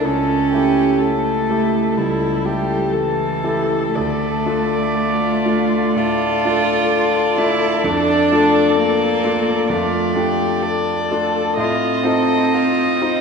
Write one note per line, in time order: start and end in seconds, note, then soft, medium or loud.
0.03 0.52 C#2 soft
0.03 1.04 C#4 medium
0.03 0.51 A4 soft
0.03 1.00 A4 soft
0.52 1.46 A3 soft
0.52 1.46 E4 soft
0.52 1.02 G4 soft
0.52 1.46 G4 soft
1.00 1.99 A3 medium
1.00 1.99 A4 soft
1.00 1.96 A4 soft
1.49 1.94 A3 soft
1.49 1.94 E4 soft
1.49 1.94 G4 soft
1.96 2.44 C#2 soft
1.96 2.96 G3 medium
1.96 2.47 E4 soft
1.96 2.90 A4 soft
2.45 3.40 A3 soft
2.45 3.40 E4 soft
2.45 2.94 G4 medium
2.45 3.41 G4 soft
2.91 3.96 E3 medium
2.91 3.97 A4 soft
2.91 4.95 A4 medium
3.43 3.92 A3 soft
3.43 3.93 E4 soft
3.43 3.93 G4 soft
3.96 4.45 D2 soft
3.96 5.99 A3 medium
3.96 5.97 D5 soft
4.46 5.41 A3 soft
4.46 5.42 D4 soft
4.46 5.42 F4 soft
4.93 5.97 F4 medium
5.45 5.93 A3 soft
5.45 5.93 D4 soft
5.45 5.93 F4 soft
5.96 6.44 A2 soft
5.96 7.40 F4 medium
5.96 6.91 A4 medium
5.96 7.81 D5 medium
6.45 7.34 A3 soft
6.45 7.34 D4 soft
6.45 7.34 F4 soft
6.92 9.72 A4 medium
7.37 7.80 A3 soft
7.37 7.80 D4 soft
7.37 7.87 E4 medium
7.37 7.81 F4 soft
7.84 8.30 F2 medium
7.84 8.78 D4 medium
7.84 9.67 D5 medium
8.30 9.20 A3 soft
8.30 9.20 D4 soft
8.30 9.20 F4 soft
8.79 9.72 A#3 medium
9.24 9.66 A3 soft
9.24 9.66 D4 soft
9.24 9.67 F4 soft
9.70 10.15 F2 soft
9.70 10.64 A3 medium
9.70 10.16 F4 medium
9.70 11.54 D5 medium
10.15 11.06 A3 soft
10.15 11.06 D4 soft
10.15 11.06 F4 soft
10.15 10.64 G4 medium
10.62 11.57 A4 medium
11.11 11.54 A3 soft
11.11 11.54 D4 soft
11.11 11.54 F4 soft
11.57 12.03 A2 medium
11.57 13.21 C4 medium
11.57 12.07 F4 medium
11.57 13.21 D#5 medium
12.03 12.97 C4 soft
12.03 12.97 D#4 soft
12.03 12.97 F4 soft
12.03 12.55 A4 medium
12.53 13.04 F4 medium
13.02 13.21 C4 soft
13.02 13.21 D#4 soft
13.02 13.21 D#4 medium
13.02 13.21 F4 soft